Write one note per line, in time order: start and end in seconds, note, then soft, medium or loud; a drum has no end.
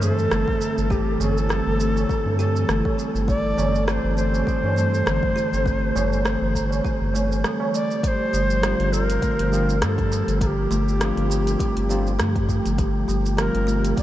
0.00 0.27 G2 medium
0.00 8.00 E3 medium
0.00 0.17 G3 medium
0.00 8.00 C4 medium
0.00 7.99 A4 medium
0.00 0.93 A4 loud
0.00 tabla ge medium
0.00 shaker medium
0.19 tabla tin soft
0.19 shaker soft
0.31 0.45 G1 loud
0.31 0.41 A3 medium
0.31 cross-stick medium
0.31 shaker soft
0.48 kick loud
0.48 tabla ge medium
0.61 0.76 D3 medium
0.61 shaker medium
0.78 1.17 G1 loud
0.78 shaker soft
0.90 1.06 G4 loud
0.90 1.23 G4 medium
0.90 kick loud
0.90 shaker soft
1.20 1.62 G1 loud
1.20 1.49 A3 medium
1.20 2.39 A4 loud
1.20 tabla na medium
1.20 tabla ge medium
1.20 shaker medium
1.37 tabla tin medium
1.37 shaker soft
1.49 1.65 G3 medium
1.49 cross-stick medium
1.49 shaker soft
1.67 2.06 G1 loud
1.80 1.89 A3 medium
1.80 shaker medium
1.96 tabla na medium
1.96 shaker soft
2.09 2.25 D3 medium
2.09 kick medium
2.09 shaker soft
2.26 2.65 G2 loud
2.26 tabla tin soft
2.26 tabla ge medium
2.39 2.55 G4 medium
2.39 2.98 A4 medium
2.39 tabla na medium
2.39 shaker medium
2.56 tabla na soft
2.56 shaker soft
2.69 2.82 G1 loud
2.69 2.97 A3 medium
2.69 cross-stick medium
2.69 shaker soft
2.85 kick loud
2.85 tabla na medium
2.98 3.14 G3 medium
2.98 shaker medium
3.15 3.54 G1 medium
3.15 shaker soft
3.28 3.37 A3 medium
3.28 3.84 D5 loud
3.28 kick loud
3.28 shaker soft
3.58 3.99 G1 loud
3.58 3.73 D3 medium
3.58 tabla na medium
3.58 tabla ge medium
3.58 shaker medium
3.74 tabla tin medium
3.74 shaker soft
3.88 4.03 G4 loud
3.88 3.94 D5 medium
3.88 cross-stick medium
3.88 shaker soft
3.93 4.15 C5 loud
4.04 4.43 G1 loud
4.17 4.46 A3 medium
4.17 7.40 C5 loud
4.17 shaker medium
4.34 tabla na medium
4.34 shaker soft
4.47 4.63 G3 medium
4.47 kick loud
4.47 shaker soft
4.63 5.03 G2 loud
4.63 tabla na medium
4.76 4.86 A3 medium
4.76 tabla ge medium
4.76 shaker medium
4.94 tabla tin soft
4.94 shaker soft
5.06 5.20 G1 loud
5.06 5.22 D3 medium
5.06 cross-stick loud
5.06 shaker soft
5.23 kick loud
5.23 tabla ge medium
5.36 5.52 G4 loud
5.36 shaker medium
5.53 5.92 G1 loud
5.53 shaker soft
5.66 5.94 A3 medium
5.66 kick loud
5.66 shaker soft
5.96 6.37 G1 loud
5.96 6.11 G3 medium
5.96 tabla na medium
5.96 tabla tin soft
5.96 tabla ge medium
5.96 shaker medium
6.12 tabla tin medium
6.12 shaker soft
6.25 6.34 A3 medium
6.25 cross-stick loud
6.25 shaker soft
6.41 6.81 G1 loud
6.55 6.71 D3 medium
6.55 kick medium
6.55 shaker medium
6.71 tabla na medium
6.71 shaker soft
6.85 7.00 G4 medium
6.85 kick medium
6.85 shaker soft
7.01 7.44 G1 medium
7.01 tabla tin soft
7.01 tabla ge medium
7.14 7.43 A3 medium
7.14 tabla na medium
7.14 shaker medium
7.31 tabla na soft
7.31 shaker soft
7.44 7.60 G3 medium
7.44 cross-stick medium
7.44 shaker soft
7.60 tabla na medium
7.74 7.83 A3 medium
7.74 8.04 D5 loud
7.74 shaker medium
7.91 shaker soft
8.03 14.03 F3 medium
8.03 8.13 G3 medium
8.03 14.03 G4 medium
8.03 8.08 D5 medium
8.03 kick loud
8.03 closed hi-hat medium
8.03 shaker soft
8.07 8.94 C5 loud
8.33 8.74 G1 loud
8.33 8.62 G3 medium
8.33 shaker medium
8.50 shaker soft
8.61 9.48 D3 medium
8.61 9.49 G3 medium
8.61 8.91 G3 medium
8.61 9.49 C4 medium
8.61 cross-stick loud
8.61 closed hi-hat medium
8.61 shaker soft
8.65 9.50 F4 medium
8.80 9.18 G1 loud
8.80 closed hi-hat soft
8.93 9.21 D3 medium
8.93 9.05 A4 loud
8.93 shaker medium
9.05 9.76 A#4 loud
9.10 closed hi-hat medium
9.10 shaker soft
9.22 9.38 A3 medium
9.22 kick loud
9.22 closed hi-hat medium
9.22 shaker soft
9.39 9.84 G1 medium
9.39 closed hi-hat soft
9.51 9.73 D3 medium
9.51 9.73 G3 medium
9.51 9.61 G3 medium
9.51 9.74 C4 medium
9.51 9.74 F4 loud
9.51 shaker medium
9.69 shaker soft
9.76 9.84 A#4 medium
9.82 10.23 G2 loud
9.82 10.10 G3 medium
9.82 10.41 A4 medium
9.82 cross-stick loud
9.82 closed hi-hat medium
9.82 shaker soft
9.98 kick loud
9.98 closed hi-hat soft
10.12 10.40 G3 medium
10.12 shaker medium
10.28 10.67 G1 loud
10.28 closed hi-hat soft
10.28 shaker soft
10.41 10.69 D3 medium
10.41 10.47 A4 medium
10.41 kick loud
10.41 closed hi-hat medium
10.41 shaker soft
10.46 12.45 G4 medium
10.71 11.12 G1 loud
10.71 10.86 A3 loud
10.71 shaker medium
10.88 shaker soft
10.99 11.85 D3 medium
10.99 11.86 G3 medium
10.99 11.10 G3 medium
10.99 11.87 C4 medium
10.99 11.87 F4 medium
10.99 cross-stick loud
10.99 closed hi-hat medium
10.99 shaker soft
11.17 11.56 G1 loud
11.17 closed hi-hat soft
11.30 11.58 G3 medium
11.30 shaker medium
11.47 closed hi-hat soft
11.47 shaker medium
11.59 11.88 G3 medium
11.59 kick loud
11.59 closed hi-hat medium
11.59 shaker soft
11.77 12.21 G1 medium
11.77 closed hi-hat soft
11.89 12.11 D3 medium
11.89 12.18 D3 medium
11.89 12.11 G3 medium
11.89 12.11 C4 medium
11.89 12.12 F4 medium
11.89 shaker medium
12.07 shaker soft
12.19 12.61 G2 loud
12.19 12.35 A3 loud
12.19 cross-stick loud
12.19 closed hi-hat medium
12.19 shaker soft
12.36 kick loud
12.36 closed hi-hat soft
12.49 12.58 G3 medium
12.49 kick medium
12.49 shaker medium
12.66 13.05 G1 loud
12.66 closed hi-hat soft
12.66 shaker soft
12.78 13.07 G3 medium
12.78 kick loud
12.78 closed hi-hat medium
12.78 shaker soft
13.08 13.50 G1 loud
13.08 13.37 G3 medium
13.08 shaker medium
13.26 shaker soft
13.36 14.03 D3 medium
13.36 13.66 D3 medium
13.36 14.03 G3 medium
13.36 14.03 C4 medium
13.36 14.03 F4 medium
13.36 13.94 A#4 loud
13.36 cross-stick loud
13.36 closed hi-hat medium
13.36 shaker soft
13.54 13.94 G1 loud
13.54 closed hi-hat soft
13.67 13.83 A3 loud
13.67 shaker medium
13.85 closed hi-hat soft
13.85 shaker soft
13.97 14.03 G3 medium
13.97 14.03 D5 loud
13.97 kick loud
13.97 closed hi-hat medium
13.97 shaker soft